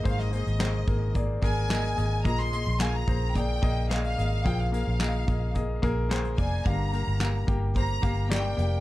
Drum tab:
HH |x-xxx-x-x-x-xxx-|x-x-x-x-x-x-xxx-|x-x-x-x-x-x-xxx-|x-x-x-x-x-x-x-x-|
CP |----x-------x---|----x-------x---|----x-------x---|----x-------x---|
SD |-o--o-------o---|-o--o-------o---|----o-------o---|----o-------o---|
BD |o-----o-o-o-----|o-----o-o-o-----|o-----o-o-o---o-|o-----o-o-o-----|